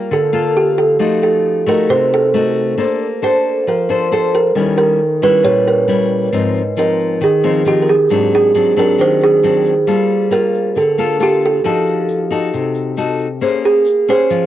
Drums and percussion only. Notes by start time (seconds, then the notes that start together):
6.33 shaker
6.55 shaker
6.77 shaker
6.99 shaker
7.21 shaker
7.43 shaker
7.65 shaker
7.87 shaker
8.09 shaker
8.32 shaker
8.54 shaker
8.76 shaker
8.98 shaker
9.21 shaker
9.43 shaker
9.65 shaker
9.87 shaker
10.09 shaker
10.31 shaker
10.54 shaker
10.76 shaker
10.98 shaker
11.20 shaker
11.42 shaker
11.65 shaker
11.87 shaker
12.09 shaker
12.32 shaker
12.53 shaker
12.75 shaker
12.97 shaker
13.19 shaker
13.41 shaker
13.64 shaker
13.85 shaker
14.08 shaker
14.30 shaker